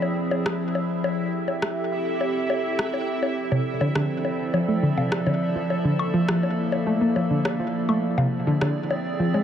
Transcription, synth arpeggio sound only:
3.52 3.60 C3 medium
3.81 3.89 D3 loud
3.95 4.07 D3 loud
4.54 4.66 F3 medium
4.68 4.76 A3 medium
4.83 4.91 D3 medium
4.97 5.05 C3 medium
5.27 5.31 D3 medium
5.56 5.64 F3 medium
5.85 5.93 D3 medium
6.14 6.22 F3 loud
6.28 6.40 F3 loud
6.87 6.99 A3 medium
7.01 7.09 A#3 medium
7.16 7.24 F3 medium
7.30 7.38 D3 medium
7.60 7.64 F3 medium
7.89 7.97 A3 medium
8.18 8.26 C3 loud
8.47 8.55 D3 loud
8.61 8.73 D3 loud
9.20 9.32 F3 medium
9.34 9.42 G#3 medium

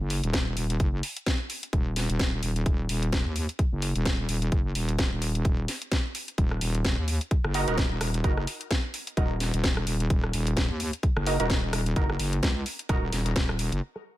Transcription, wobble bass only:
0.00 0.21 F#1 medium
0.24 0.55 D#1 loud
0.57 0.78 D#1 loud
0.80 1.02 F#1 medium
1.73 2.07 D#1 loud
2.10 2.41 D#1 loud
2.43 2.64 D#1 loud
2.66 2.88 D#1 medium
2.89 3.24 D#1 loud
3.26 3.47 D#2 loud
3.72 3.94 F#1 loud
3.96 4.27 D#1 loud
4.29 4.50 D#1 loud
4.52 4.74 F#1 loud
4.75 5.10 D#1 loud
5.12 5.43 D#1 loud
5.45 5.67 D#1 medium
6.38 6.60 D#1 medium
6.61 6.96 D#1 loud
6.98 7.19 D#2 loud
7.44 7.66 F#1 medium
7.68 7.99 D#1 loud
8.01 8.23 D#1 loud
8.24 8.46 F#1 loud
9.17 9.52 D#1 medium
9.54 9.85 D#1 loud
9.87 10.09 D#1 loud
10.10 10.32 D#1 loud
10.33 10.68 D#1 medium
10.70 10.91 D#2 loud
11.17 11.38 F#1 loud
11.40 11.71 D#1 loud
11.73 11.95 D#1 loud
11.96 12.18 F#1 medium
12.19 12.41 F#1 loud
12.43 12.64 C#2 loud
12.89 13.11 D#1 medium
13.13 13.34 D#1 loud
13.36 13.70 D#1 loud
13.72 13.81 F#1 loud

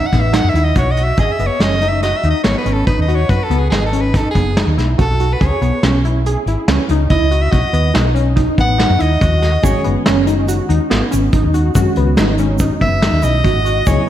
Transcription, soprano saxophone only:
0.06 0.22 F#5 medium
0.20 0.36 E5 medium
0.35 0.51 F#5 medium
0.49 0.66 E5 medium
0.65 0.77 D#5 medium
0.78 0.93 C#5 medium
0.91 1.05 D#5 medium
1.04 1.18 E5 medium
1.20 1.34 D#5 medium
1.32 1.48 E5 medium
1.47 1.63 C#5 medium
1.61 1.90 D#5 medium
1.89 2.02 E5 medium
2.03 2.18 D#5 medium
2.17 2.30 E5 medium
2.30 2.43 D#5 medium
2.44 2.57 C#5 medium
2.58 2.74 B4 medium
2.73 2.86 A4 medium
2.87 3.00 B4 medium
3.02 3.17 D#5 medium
3.15 3.31 C#5 medium
3.30 3.45 B4 medium
3.44 3.60 A4 medium
3.58 3.70 G#4 medium
3.70 3.84 G#4 medium
3.86 4.02 A4 medium
4.01 4.18 B4 medium
4.17 4.30 A4 medium
4.31 4.69 G#4 medium
5.01 5.35 A4 medium
5.33 5.47 B4 medium
5.46 5.86 C#5 medium
7.10 7.43 D#5 medium
7.42 7.53 E5 medium
7.51 7.94 D#5 medium
8.60 9.02 F#5 medium
9.01 9.66 D#5 medium
9.65 9.86 C#5 medium
12.81 13.26 E5 medium
13.24 13.89 D#5 loud
13.87 14.09 C#5 medium

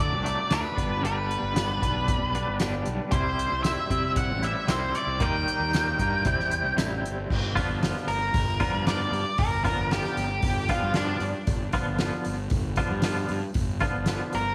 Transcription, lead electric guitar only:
0.00 0.53 D5 medium
0.53 1.00 B4 medium
1.06 2.57 B4 medium
3.12 3.60 C5 medium
3.63 4.12 E5 loud
4.17 4.43 F#5 medium
4.44 4.70 E5 medium
4.71 4.96 C5 medium
4.95 5.22 D5 medium
5.22 6.74 G5 medium
8.08 8.84 A#4 medium
8.87 9.37 D5 medium
9.39 9.63 A#4 medium
9.64 9.90 A#4 medium
9.92 10.67 G4 medium
10.71 10.95 F4 medium
10.96 11.20 D4 loud
14.35 14.55 A#4 medium

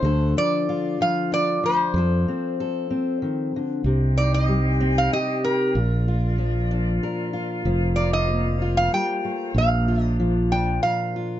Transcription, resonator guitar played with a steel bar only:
0.00 0.33 C5 medium
0.38 1.01 D5 medium
1.02 1.33 F5 medium
1.34 1.65 D5 medium
1.66 3.51 C5 medium
4.17 4.34 D5 medium
4.34 4.98 D#5 medium
4.98 5.13 F5 medium
5.13 5.42 D#5 medium
5.44 6.67 A#4 medium
7.96 8.13 D5 medium
8.13 8.77 D#5 medium
8.77 8.93 F5 medium
8.94 9.58 G5 medium
9.58 10.03 F5 medium
10.03 10.17 D#5 medium
10.52 10.82 G5 medium
10.83 11.27 F5 medium

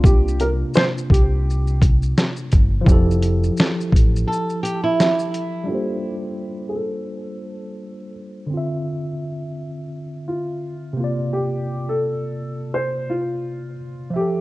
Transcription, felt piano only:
0.05 0.41 G4 medium
0.41 0.49 A#4 medium
0.76 0.83 C5 loud
1.11 1.77 G4 medium
5.69 6.72 G4 medium
6.69 6.75 G#4 medium
6.75 8.12 A4 medium
10.28 11.37 F4 medium
11.33 11.91 G4 medium
11.89 12.77 A4 loud
12.74 13.11 C5 loud
13.10 14.12 F4 medium
14.16 14.41 G4 medium

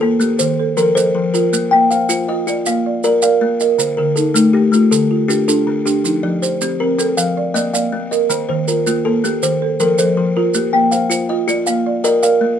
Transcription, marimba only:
0.00 0.40 A#3 medium
0.00 0.40 F4 medium
0.22 0.78 G4 medium
0.40 0.59 D#3 medium
0.59 0.77 A4 medium
0.79 0.96 A4 medium
0.97 1.34 F3 medium
0.97 1.53 A4 medium
1.34 1.72 F4 medium
1.73 2.10 A#3 medium
1.92 2.10 C5 medium
2.11 2.67 C5 medium
2.29 2.66 F4 medium
2.48 2.85 D5 medium
2.67 3.04 A#3 medium
2.86 3.03 D5 medium
3.04 3.22 D5 medium
3.23 3.60 A#4 medium
3.23 3.80 D5 medium
3.61 3.98 A#4 medium
3.98 4.36 D3 medium
4.17 4.34 D#4 medium
4.35 4.92 D#4 medium
4.55 4.92 A3 medium
4.74 5.10 F4 medium
4.92 5.30 D3 medium
5.11 5.29 F4 medium
5.30 5.47 F4 medium
5.48 5.85 D4 medium
5.48 6.05 F4 medium
5.86 6.24 D4 medium
6.05 6.43 D#4 medium
6.23 6.61 F3 medium
6.43 6.60 G4 medium
6.61 7.18 G4 medium
6.80 7.18 C4 medium
7.00 7.56 A4 medium
7.18 7.36 F3 medium
7.37 7.55 D5 medium
7.56 7.73 D5 medium
7.74 8.12 A#3 medium
7.74 8.30 D5 medium
8.12 8.49 A#4 medium
8.50 8.87 D#3 medium
8.68 8.86 F4 medium
8.87 9.43 F4 medium
9.06 9.43 A#3 medium
9.24 9.80 G4 medium
9.43 9.62 D#3 medium
9.62 9.80 A4 medium
9.81 9.98 A4 medium
9.99 10.37 F3 medium
9.99 10.55 A4 medium
10.37 10.74 F4 medium
10.55 10.92 G4 medium
10.74 11.11 A#3 medium
10.93 11.10 C5 medium
11.11 11.67 C5 medium
11.30 11.67 F4 medium
11.49 11.85 D5 medium
11.67 12.05 A#3 medium
11.86 12.04 D5 medium
12.05 12.22 D5 medium
12.23 12.60 A#4 medium
12.23 12.60 D5 medium

